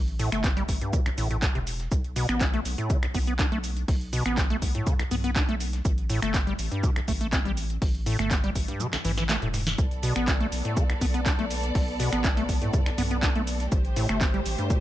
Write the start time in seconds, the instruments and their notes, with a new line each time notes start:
Already playing: analog synth bass A1
0.08 closed hi-hat
0.19 acid bass A2, open hi-hat, shaker
0.32 analog synth bass G1, acid bass A3, finger snap, closed hi-hat
0.44 acid bass C4, kick, snare, clap, closed hi-hat, shaker
0.57 acid bass G3, closed hi-hat
0.69 analog synth bass A1, kick, open hi-hat, shaker
0.81 acid bass G2, closed hi-hat
0.93 acid bass C3, kick, closed hi-hat, shaker
1.06 acid bass A1, finger snap, closed hi-hat
1.18 analog synth bass A1, acid bass A2, open hi-hat, shaker
1.31 acid bass A2, closed hi-hat
1.42 acid bass A2, kick, snare, clap, closed hi-hat, shaker
1.55 analog synth bass E1, acid bass C3, closed hi-hat
1.67 open hi-hat, shaker
1.80 snare, closed hi-hat
1.92 analog synth bass B1, kick, closed hi-hat, shaker
2.04 closed hi-hat
2.16 acid bass B2, snare, open hi-hat, shaker
2.29 analog synth bass A1, acid bass B3, finger snap, closed hi-hat
2.41 acid bass D4, kick, snare, clap, closed hi-hat, shaker
2.54 acid bass A3, closed hi-hat
2.65 analog synth bass B1, open hi-hat, shaker
2.78 acid bass A2, closed hi-hat
2.90 acid bass D3, kick, closed hi-hat, shaker
3.03 acid bass B1, finger snap, closed hi-hat
3.15 analog synth bass B1, acid bass B3, kick, open hi-hat, shaker
3.27 acid bass B3, closed hi-hat
3.39 acid bass D4, kick, snare, clap, closed hi-hat, shaker
3.52 analog synth bass B1, acid bass A3, closed hi-hat
3.64 open hi-hat, shaker
3.77 closed hi-hat
3.88 analog synth bass B1, kick, closed hi-hat, open hi-hat
4.01 closed hi-hat
4.13 acid bass B2, open hi-hat, shaker
4.26 analog synth bass A1, acid bass B3, finger snap, closed hi-hat
4.37 acid bass D4, kick, snare, clap, closed hi-hat, shaker
4.50 acid bass A3, closed hi-hat
4.62 analog synth bass B1, kick, open hi-hat, shaker
4.75 acid bass A2, closed hi-hat, mid tom
4.87 acid bass D3, kick, closed hi-hat, shaker
4.99 acid bass B1, finger snap, closed hi-hat
5.11 analog synth bass B1, acid bass B3, mid tom, open hi-hat, shaker
5.24 acid bass B3, closed hi-hat
5.36 acid bass D4, kick, snare, clap, closed hi-hat, shaker
5.49 analog synth bass B1, acid bass A3, closed hi-hat
5.60 open hi-hat, shaker
5.73 snare, closed hi-hat
5.85 analog synth bass A1, kick, closed hi-hat, shaker
5.98 closed hi-hat
6.10 acid bass A2, snare, open hi-hat, shaker
6.22 analog synth bass G1, acid bass A3, finger snap, closed hi-hat
6.34 acid bass C4, kick, snare, clap, closed hi-hat, shaker
6.47 acid bass G3, closed hi-hat
6.59 analog synth bass A1, open hi-hat, shaker
6.72 acid bass G2, closed hi-hat
6.83 acid bass C3, kick, closed hi-hat, shaker
6.96 acid bass A1, finger snap, closed hi-hat
7.08 analog synth bass A1, acid bass A3, kick, open hi-hat, shaker
7.21 acid bass A3, closed hi-hat
7.33 acid bass C4, kick, snare, clap, closed hi-hat, shaker
7.45 analog synth bass A1, acid bass G3, closed hi-hat
7.57 open hi-hat, shaker
7.70 closed hi-hat
7.82 analog synth bass A1, kick, closed hi-hat, open hi-hat
7.95 closed hi-hat
8.06 acid bass A2, open hi-hat, shaker
8.19 analog synth bass G1, acid bass A3, finger snap, closed hi-hat, mid tom
8.31 acid bass C4, kick, snare, clap, closed hi-hat, shaker
8.44 acid bass G3, closed hi-hat
8.56 analog synth bass A1, kick, open hi-hat, shaker
8.68 acid bass G2, closed hi-hat, mid tom
8.80 acid bass C3, closed hi-hat, high tom, shaker
8.93 acid bass A1, finger snap, snare, clap, closed hi-hat
9.05 analog synth bass A1, acid bass E3, snare, mid tom, open hi-hat, shaker
9.17 acid bass E3, snare, closed hi-hat
9.29 acid bass A3, snare, clap, closed hi-hat, shaker
9.42 analog synth bass E1, acid bass A2, closed hi-hat
9.54 snare, mid tom, open hi-hat, shaker
9.67 snare, closed hi-hat
9.78 analog synth bass B1, string section B3 A4 D5, kick, closed hi-hat, shaker
9.91 closed hi-hat
10.03 acid bass B2, snare, open hi-hat, shaker
10.16 analog synth bass A1, acid bass B3, finger snap, closed hi-hat
10.28 acid bass D4, kick, snare, clap, closed hi-hat, shaker
10.40 acid bass A3, closed hi-hat
10.52 analog synth bass B1, open hi-hat, shaker
10.65 acid bass A2, closed hi-hat
10.77 acid bass D3, kick, closed hi-hat, shaker
10.90 acid bass B1, finger snap, closed hi-hat
11.01 analog synth bass B1, acid bass B3, kick, open hi-hat, shaker
11.14 acid bass B3, closed hi-hat
11.26 acid bass D4, kick, snare, clap, closed hi-hat, shaker
11.39 analog synth bass B1, acid bass A3, closed hi-hat
11.51 open hi-hat, shaker
11.63 closed hi-hat
11.75 analog synth bass B1, kick, closed hi-hat, open hi-hat
11.88 closed hi-hat
12.00 acid bass B2, open hi-hat, shaker
12.13 analog synth bass A1, acid bass B3, finger snap, closed hi-hat
12.24 acid bass D4, kick, snare, clap, closed hi-hat, shaker
12.37 acid bass A3, closed hi-hat
12.49 analog synth bass B1, kick, open hi-hat, shaker
12.62 acid bass A2, closed hi-hat, mid tom
12.73 acid bass D3, kick, closed hi-hat, shaker
12.86 acid bass B1, finger snap, closed hi-hat
12.98 analog synth bass B1, acid bass B3, mid tom, open hi-hat, shaker
13.11 acid bass B3, closed hi-hat
13.23 acid bass D4, kick, snare, clap, closed hi-hat, shaker
13.35 analog synth bass B1, acid bass A3, closed hi-hat
13.47 open hi-hat, shaker
13.60 snare, closed hi-hat
13.72 analog synth bass A1, string section A3 G4 C5, kick, closed hi-hat, shaker
13.85 closed hi-hat
13.96 acid bass A2, snare, open hi-hat, shaker
14.09 analog synth bass G1, acid bass A3, finger snap, closed hi-hat
14.21 acid bass C4, kick, snare, clap, closed hi-hat, shaker
14.34 acid bass G3, closed hi-hat
14.46 analog synth bass A1, open hi-hat, shaker
14.58 acid bass G2, closed hi-hat
14.70 acid bass C3, kick, closed hi-hat, shaker